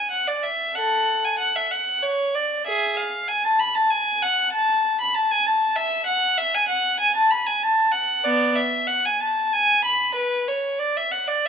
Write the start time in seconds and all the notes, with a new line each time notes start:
Already playing: G#5
0.11 F#5
0.27 D5
0.43 E5
0.75 A4 F#5
1.24 G#5
1.39 F#5
1.56 E5
1.71 F#5
2.03 C#5
2.35 D5
2.66 G#4 E5
2.97 F5
3.28 G#5
3.44 A5
3.59 B5
3.75 A5
3.90 G#5
4.22 F#5
4.52 A5
5.01 B5
5.15 A5
5.31 G#5
5.46 A5
5.76 E5
6.06 F#5
6.38 E5
6.55 G#5
6.68 F#5
7.00 G#5
7.16 A5
7.31 B5
7.46 G#5
7.62 A5
7.92 F#5
8.24 B3 D5
8.56 E5
8.87 F#5
9.05 G#5
9.20 A5
9.53 G#5
9.84 B5
10.15 B4
10.48 C#5
10.79 D5
10.97 E5
11.11 F#5
11.28 D5